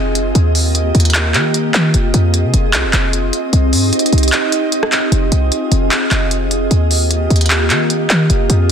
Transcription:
0.00 0.33 F1 loud
0.00 0.34 C4 medium
0.00 3.49 F4 medium
0.00 0.34 G#4 medium
0.00 0.34 D#5 medium
0.15 closed hi-hat medium
0.35 0.92 D#2 loud
0.35 1.92 A#3 medium
0.35 1.92 G4 medium
0.35 8.72 D#5 medium
0.35 closed hi-hat medium
0.55 open hi-hat medium
0.75 closed hi-hat medium
0.95 1.36 D#2 loud
0.95 closed hi-hat soft
1.00 closed hi-hat medium
1.05 closed hi-hat medium
1.10 closed hi-hat medium
1.14 clap loud
1.14 closed hi-hat medium
1.34 1.72 D#3 loud
1.34 clap medium
1.34 closed hi-hat medium
1.54 closed hi-hat medium
1.74 1.93 D#3 loud
1.74 clap medium
1.74 closed hi-hat medium
1.94 2.13 F1 loud
1.94 6.67 C4 medium
1.94 3.51 G#4 medium
1.94 closed hi-hat medium
2.14 2.46 F2 loud
2.14 closed hi-hat medium
2.34 closed hi-hat medium
2.44 2.53 C3 loud
2.54 2.75 F1 loud
2.54 closed hi-hat medium
2.73 2.86 C2 loud
2.73 clap loud
2.73 closed hi-hat medium
2.84 2.93 F1 loud
2.93 3.32 F1 loud
2.93 clap medium
2.93 closed hi-hat medium
3.13 closed hi-hat medium
3.33 closed hi-hat medium
3.53 3.74 C2 loud
3.53 5.10 D#4 medium
3.53 5.10 G4 medium
3.53 closed hi-hat medium
3.73 3.92 G2 loud
3.73 open hi-hat medium
3.93 closed hi-hat medium
3.99 closed hi-hat medium
4.06 closed hi-hat medium
4.12 4.32 C2 loud
4.12 closed hi-hat soft
4.18 closed hi-hat medium
4.23 closed hi-hat medium
4.28 closed hi-hat medium
4.32 clap loud
4.32 closed hi-hat medium
4.52 closed hi-hat medium
4.72 closed hi-hat medium
4.83 cross-stick medium
4.92 clap medium
4.92 closed hi-hat medium
5.12 5.31 F1 loud
5.12 6.69 F4 medium
5.12 6.69 G#4 medium
5.12 closed hi-hat medium
5.32 5.51 C2 loud
5.32 closed hi-hat medium
5.52 closed hi-hat medium
5.72 5.91 F1 loud
5.72 closed hi-hat medium
5.91 clap loud
5.91 closed hi-hat medium
6.11 6.68 F1 loud
6.11 clap loud
6.11 closed hi-hat medium
6.31 closed hi-hat medium
6.51 closed hi-hat medium
6.71 7.28 D#2 loud
6.71 8.28 A#3 medium
6.71 8.72 F4 medium
6.71 8.28 G4 medium
6.71 closed hi-hat medium
6.91 open hi-hat medium
7.11 closed hi-hat medium
7.30 7.72 D#2 loud
7.30 closed hi-hat soft
7.36 closed hi-hat medium
7.41 closed hi-hat medium
7.46 closed hi-hat medium
7.50 clap loud
7.50 closed hi-hat medium
7.70 8.08 D#3 loud
7.70 clap medium
7.70 closed hi-hat medium
7.90 closed hi-hat medium
8.10 8.29 D#3 loud
8.10 clap medium
8.10 closed hi-hat medium
8.30 8.49 F1 loud
8.30 8.72 C4 medium
8.30 8.72 G#4 medium
8.30 closed hi-hat medium
8.50 8.72 F2 loud
8.50 closed hi-hat medium

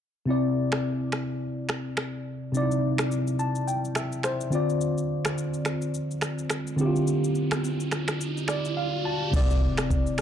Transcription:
0.26 2.49 C3 medium
0.26 2.50 C4 medium
0.26 2.51 E4 medium
0.30 2.52 D5 medium
0.72 finger snap medium
0.72 cross-stick loud
1.12 finger snap medium
1.12 cross-stick medium
1.69 finger snap medium
1.69 cross-stick medium
1.97 finger snap medium
1.97 cross-stick medium
2.52 4.47 C3 medium
2.52 4.48 C4 medium
2.52 2.62 D#4 medium
2.52 shaker medium
2.57 4.50 D5 medium
2.62 4.52 E4 medium
2.71 shaker medium
2.98 finger snap medium
2.98 cross-stick loud
2.98 shaker medium
3.12 shaker medium
3.27 shaker soft
3.39 3.66 A5 medium
3.39 shaker medium
3.55 shaker medium
3.68 3.94 G5 medium
3.68 shaker medium
3.85 shaker soft
3.95 4.22 E5 medium
3.95 finger snap medium
3.95 cross-stick medium
3.95 shaker medium
4.12 shaker medium
4.23 4.77 C5 medium
4.23 finger snap medium
4.23 cross-stick medium
4.23 shaker medium
4.41 shaker medium
4.50 6.74 D3 medium
4.50 6.75 C4 medium
4.50 6.75 F4 medium
4.50 shaker soft
4.55 6.76 D5 medium
4.70 shaker soft
4.81 riser medium
4.81 shaker medium
4.98 shaker medium
5.25 finger snap medium
5.25 cross-stick loud
5.25 shaker medium
5.38 shaker medium
5.54 shaker medium
5.65 finger snap medium
5.65 cross-stick medium
5.65 shaker medium
5.82 shaker medium
5.94 shaker medium
6.11 shaker soft
6.21 finger snap medium
6.21 cross-stick medium
6.21 shaker medium
6.39 shaker soft
6.50 finger snap medium
6.50 cross-stick medium
6.50 shaker medium
6.67 shaker medium
6.76 9.00 D3 medium
6.76 9.01 C4 medium
6.76 6.87 E4 medium
6.76 shaker soft
6.81 9.03 G4 medium
6.86 9.05 F4 medium
6.96 shaker soft
7.07 shaker medium
7.24 shaker medium
7.35 shaker soft
7.51 finger snap medium
7.51 cross-stick loud
7.51 shaker medium
7.64 shaker medium
7.80 shaker medium
7.91 finger snap medium
7.91 cross-stick medium
7.91 shaker medium
8.08 finger snap medium
8.08 cross-stick medium
8.08 shaker medium
8.21 shaker medium
8.37 shaker soft
8.48 8.75 D5 medium
8.48 finger snap medium
8.48 cross-stick medium
8.48 shaker medium
8.65 shaker medium
8.77 9.03 F5 medium
9.05 9.32 A5 medium
9.31 9.67 C2 loud
9.31 10.21 C3 medium
9.31 10.21 C4 medium
9.31 10.21 E4 medium
9.31 kick loud
9.31 crash medium
9.31 impact medium
9.31 shaker medium
9.36 10.21 D5 medium
9.51 shaker medium
9.77 finger snap medium
9.77 cross-stick loud
9.77 shaker medium
9.90 kick medium
9.90 shaker medium
10.06 shaker medium
10.18 finger snap medium
10.18 shaker medium

